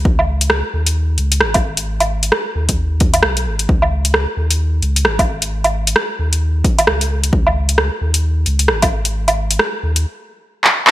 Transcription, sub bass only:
0.05 0.63 C#2 medium
0.74 1.18 D#2 loud
1.19 1.43 C#2 loud
1.42 2.32 G#1 medium
2.55 3.25 D#2 loud
3.23 3.47 B1 medium
3.46 3.67 G#1 medium
3.69 4.26 C#2 medium
4.37 4.81 D#2 loud
4.82 5.06 C#2 loud
5.05 5.95 G#1 medium
6.19 6.63 D#2 loud
6.87 7.32 C#2 medium
7.33 7.90 C#2 loud
8.01 8.45 D#2 loud
8.47 8.71 C#2 loud
8.70 9.59 G#1 medium
9.83 10.06 D#2 loud

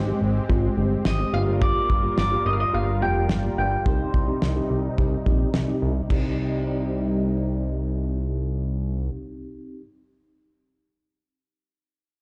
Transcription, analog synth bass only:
0.00 0.13 G#1 loud
0.21 0.41 G#1 medium
0.50 0.69 G#1 loud
0.77 0.97 G1 loud
1.05 1.25 G#1 medium
1.33 1.73 G1 loud
1.90 2.09 G1 medium
2.18 2.37 G1 loud
2.46 2.65 G1 medium
2.74 3.03 G1 loud
3.02 3.31 F1 medium
3.30 3.49 G1 loud
3.58 3.78 G1 loud
3.86 4.05 C2 loud
4.14 4.34 C2 loud
4.42 4.62 C2 loud
4.70 4.90 C2 medium
4.98 5.18 C2 loud
5.26 5.46 A#1 loud
5.54 5.74 C2 loud
5.82 6.02 C2 loud
6.10 9.10 C2 loud

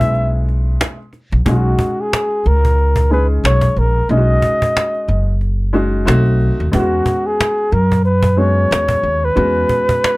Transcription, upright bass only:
0.00 0.76 B1 medium
1.32 1.43 A#1 loud
1.46 1.72 B1 medium
2.46 3.40 C#2 medium
3.44 3.69 B1 medium
3.76 4.02 A#1 medium
4.09 4.35 B1 medium
5.08 6.03 F#1 medium
6.07 6.48 B1 loud
6.60 6.70 D#2 medium
6.74 6.99 E2 medium
7.72 8.67 F#2 medium
8.71 8.97 E2 medium
9.03 9.29 D#2 medium
9.37 9.62 E2 medium

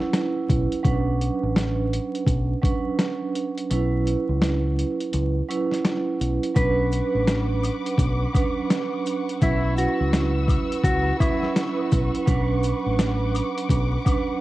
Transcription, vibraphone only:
0.00 0.78 F#3 loud
0.00 0.78 C#4 medium
0.00 0.79 E4 medium
0.00 0.79 B4 loud
0.83 2.52 F#3 loud
0.83 2.52 C#4 medium
0.83 2.53 D4 medium
0.83 2.53 B4 loud
2.62 3.63 F#3 loud
2.62 3.64 C#4 medium
2.62 3.64 D4 medium
2.62 3.65 B4 loud
3.70 5.38 F#3 medium
3.70 5.39 C#4 medium
3.70 5.39 E4 medium
3.70 5.39 B4 loud
5.48 6.49 F#3 loud
5.48 6.50 C#4 medium
5.48 6.50 E4 medium
5.48 6.51 B4 loud
6.54 8.23 F#3 loud
6.54 8.24 C#4 medium
6.54 8.24 D4 medium
6.54 8.24 B4 loud
8.33 9.35 F#3 loud
8.33 9.35 C#4 medium
8.33 9.36 D4 medium
8.33 9.36 B4 loud
9.42 11.10 F#3 loud
9.42 11.10 C#4 medium
9.42 11.11 E4 medium
9.42 11.11 B4 loud
11.20 12.21 F#3 loud
11.20 12.21 C#4 medium
11.20 12.22 E4 loud
11.20 12.22 B4 loud
12.26 13.95 F#3 loud
12.26 13.95 C#4 medium
12.26 13.95 D4 medium
12.26 13.96 B4 loud
14.05 14.41 F#3 medium
14.05 14.41 C#4 medium
14.05 14.41 D4 medium
14.05 14.41 B4 loud

